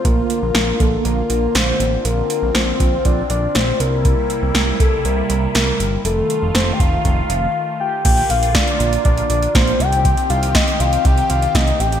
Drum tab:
CC |----------------|----------------|----------------|----------------|
HH |x-x-x-x-x-x-x-x-|x-x-x-x-x-x-x-x-|x-x-x-x-x-x-x-x-|x-x-x-x-x-x-----|
SD |----o-------o---|----o-------o---|----o-------o---|----o-----------|
BD |o-----o---------|------o-o-------|o-----o---------|------o-o-------|

CC |x---------------|----------------|
HH |xxxxxxxxxxxxxxxx|xxxxxxxxxxxxxxxx|
SD |----o-------o---|----o-------o---|
BD |o---o---o---o---|o---o---o---o---|